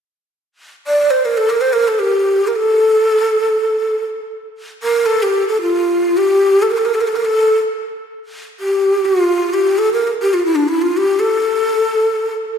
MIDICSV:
0, 0, Header, 1, 2, 480
1, 0, Start_track
1, 0, Tempo, 500000
1, 12081, End_track
2, 0, Start_track
2, 0, Title_t, "Ney"
2, 0, Program_c, 0, 77
2, 835, Note_on_c, 0, 74, 77
2, 1060, Note_on_c, 0, 72, 67
2, 1074, Note_off_c, 0, 74, 0
2, 1201, Note_on_c, 0, 70, 64
2, 1215, Note_off_c, 0, 72, 0
2, 1316, Note_on_c, 0, 69, 66
2, 1330, Note_off_c, 0, 70, 0
2, 1438, Note_on_c, 0, 70, 64
2, 1452, Note_off_c, 0, 69, 0
2, 1545, Note_on_c, 0, 72, 66
2, 1559, Note_off_c, 0, 70, 0
2, 1661, Note_on_c, 0, 70, 63
2, 1675, Note_off_c, 0, 72, 0
2, 1803, Note_on_c, 0, 69, 58
2, 1817, Note_off_c, 0, 70, 0
2, 1913, Note_on_c, 0, 67, 60
2, 1927, Note_off_c, 0, 69, 0
2, 2374, Note_on_c, 0, 70, 46
2, 2388, Note_off_c, 0, 67, 0
2, 2454, Note_on_c, 0, 69, 66
2, 2468, Note_off_c, 0, 70, 0
2, 3869, Note_off_c, 0, 69, 0
2, 4634, Note_on_c, 0, 70, 77
2, 4855, Note_on_c, 0, 69, 73
2, 4869, Note_off_c, 0, 70, 0
2, 5015, Note_on_c, 0, 67, 72
2, 5029, Note_off_c, 0, 69, 0
2, 5248, Note_off_c, 0, 67, 0
2, 5261, Note_on_c, 0, 69, 69
2, 5382, Note_off_c, 0, 69, 0
2, 5388, Note_on_c, 0, 65, 72
2, 5925, Note_on_c, 0, 67, 73
2, 5939, Note_off_c, 0, 65, 0
2, 6357, Note_on_c, 0, 69, 54
2, 6371, Note_off_c, 0, 67, 0
2, 6439, Note_on_c, 0, 70, 54
2, 6454, Note_off_c, 0, 69, 0
2, 6501, Note_on_c, 0, 69, 55
2, 6516, Note_off_c, 0, 70, 0
2, 6577, Note_on_c, 0, 70, 61
2, 6591, Note_off_c, 0, 69, 0
2, 6665, Note_on_c, 0, 69, 56
2, 6680, Note_off_c, 0, 70, 0
2, 6727, Note_on_c, 0, 70, 55
2, 6741, Note_off_c, 0, 69, 0
2, 6793, Note_on_c, 0, 69, 55
2, 6807, Note_off_c, 0, 70, 0
2, 6872, Note_on_c, 0, 70, 56
2, 6887, Note_off_c, 0, 69, 0
2, 6960, Note_on_c, 0, 69, 74
2, 6974, Note_off_c, 0, 70, 0
2, 7273, Note_off_c, 0, 69, 0
2, 8254, Note_on_c, 0, 67, 67
2, 8691, Note_on_c, 0, 65, 72
2, 8705, Note_off_c, 0, 67, 0
2, 9154, Note_on_c, 0, 67, 72
2, 9169, Note_off_c, 0, 65, 0
2, 9392, Note_on_c, 0, 69, 76
2, 9406, Note_off_c, 0, 67, 0
2, 9525, Note_off_c, 0, 69, 0
2, 9531, Note_on_c, 0, 70, 67
2, 9667, Note_off_c, 0, 70, 0
2, 9667, Note_on_c, 0, 70, 55
2, 9687, Note_off_c, 0, 70, 0
2, 9808, Note_on_c, 0, 67, 65
2, 9922, Note_on_c, 0, 65, 65
2, 9937, Note_off_c, 0, 67, 0
2, 10031, Note_off_c, 0, 65, 0
2, 10036, Note_on_c, 0, 64, 61
2, 10129, Note_on_c, 0, 62, 68
2, 10143, Note_off_c, 0, 64, 0
2, 10255, Note_on_c, 0, 64, 67
2, 10269, Note_off_c, 0, 62, 0
2, 10383, Note_on_c, 0, 65, 70
2, 10398, Note_off_c, 0, 64, 0
2, 10530, Note_on_c, 0, 67, 64
2, 10544, Note_off_c, 0, 65, 0
2, 10748, Note_on_c, 0, 69, 72
2, 10762, Note_off_c, 0, 67, 0
2, 11831, Note_off_c, 0, 69, 0
2, 12081, End_track
0, 0, End_of_file